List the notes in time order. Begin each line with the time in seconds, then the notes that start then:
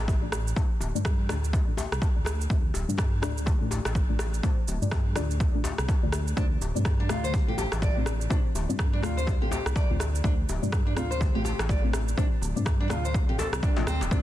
Already playing: D4
0.00 A1
0.08 kick, djembe tone, shaker
0.22 A3 D4 F4 D5
0.32 cross-stick, djembe tone, shaker
0.48 shaker
0.56 A3 D4 F4 C5, kick, djembe tone, shaker
0.81 D1, djembe tone, shaker
0.95 G2 A3 D4 F4 D5, shaker
1.05 kick, cross-stick, djembe tone, shaker
1.29 D2 A3 D4 F4 D5, cross-stick, djembe tone, shaker
1.44 shaker
1.53 kick, djembe tone, shaker
1.68 A3 D4 F4 A4
1.77 djembe slap, djembe tone, djembe bass, shaker
1.92 C2, cross-stick, shaker
2.02 kick, djembe tone, shaker
2.16 D2 A3 D4 F4 D5
2.25 cross-stick, djembe tone, shaker
2.41 shaker
2.50 D2 A3 D4 F4 C5, kick, djembe tone, shaker
2.74 D1, djembe tone, shaker
2.88 G2 A3 D4 F4 D5, shaker
2.98 kick, cross-stick, djembe tone, shaker
3.22 D2 A3 D4 F4 D5, cross-stick, djembe tone, shaker
3.38 shaker
3.46 kick, djembe tone, djembe bass, shaker
3.61 A1 A3 D4 F4 A4
3.71 djembe tone, djembe bass, shaker
3.85 A1, cross-stick, djembe slap, shaker
3.95 kick, djembe tone, shaker
4.09 A3 D4 F4 D5
4.19 cross-stick, djembe tone, shaker
4.34 shaker
4.43 A3 D4 F4 C5, kick, djembe tone, shaker
4.68 D1, djembe tone, shaker
4.82 G2 A3 D4 F4 D5, shaker
4.92 kick, cross-stick, djembe tone, shaker
5.16 D2 A3 D4 F4 D5, cross-stick, djembe tone, shaker
5.31 shaker
5.40 kick, djembe tone, shaker
5.54 A3 D4 F4 A4
5.64 djembe slap, djembe tone, djembe bass, shaker
5.78 C2, cross-stick, shaker
5.88 kick, djembe tone, shaker
6.03 D2 A3 D4 F4 D5
6.13 cross-stick, djembe tone, shaker
6.28 shaker
6.37 D2 A3 C4 D4 F4 C5, kick, djembe tone, shaker
6.61 D1, djembe tone, shaker
6.75 G2 A3 C4 F4 D5, shaker
6.85 kick, cross-stick, djembe tone, shaker
7.00 D4
7.09 D2 A3 C4 F4 D5, cross-stick, djembe tone, shaker
7.24 C5, shaker
7.34 kick, djembe tone, djembe bass, shaker
7.48 A1 A3 C4 F4 G4 A4
7.58 G4, djembe tone, djembe bass, shaker
7.72 A1, cross-stick, djembe slap, shaker
7.82 D5, kick, djembe tone, shaker
7.96 A3 C4 F4 D5
8.06 cross-stick, djembe tone, shaker
8.21 shaker
8.30 A3 C4 D4 F4 C5, kick, djembe tone, shaker
8.55 D1, djembe tone, shaker
8.69 G2 A3 C4 F4 D5, shaker
8.79 kick, cross-stick, djembe tone, shaker
8.93 D4
9.02 D2 A3 C4 F4 D5, cross-stick, djembe tone, shaker
9.17 C5, shaker
9.27 kick, djembe tone, shaker
9.42 A3 C4 F4 G4 A4
9.51 G4, djembe slap, djembe tone, djembe bass, shaker
9.66 C2, cross-stick, shaker
9.75 D5, kick, djembe tone, shaker
9.90 D2 A3 C4 F4 D5
10.00 cross-stick, djembe tone, shaker
10.15 shaker
10.24 D2 A3 C4 D4 F4 C5, kick, djembe tone, shaker
10.48 D1, djembe tone, shaker
10.62 G2 A3 C4 F4 D5, shaker
10.72 kick, cross-stick, djembe tone, shaker
10.87 D4
10.96 D2 A3 C4 F4 D5, cross-stick, djembe tone, shaker
11.11 C5, shaker
11.21 kick, djembe tone, djembe bass, shaker
11.35 A1 A3 C4 F4 G4 A4
11.44 G4, djembe tone, djembe bass, shaker
11.59 A1, cross-stick, djembe slap, shaker
11.69 D5, kick, djembe tone, shaker
11.83 A3 C4 F4 D5
11.93 cross-stick, djembe tone, shaker
12.08 shaker
12.17 A3 C4 D4 F4 C5, kick, djembe tone, shaker
12.42 D1, djembe tone, shaker
12.56 G2 A3 C4 F4 D5, shaker
12.65 kick, cross-stick, djembe tone, shaker
12.80 D4
12.90 D2 A3 C4 F4 D5, cross-stick, djembe tone, shaker
13.05 C5, shaker
13.14 kick, djembe tone, shaker
13.29 A3 C4 F4 G4 A4
13.38 A4, djembe slap, djembe tone, djembe bass, shaker
13.53 C2, cross-stick, shaker
13.63 D4, kick, djembe tone, shaker
13.77 A3 C4 F4 D5, djembe slap
13.87 D2 C4, cross-stick, djembe tone, shaker
14.01 D1, djembe slap, shaker
14.11 D2 A3 D4 F4 C5, kick, djembe tone, shaker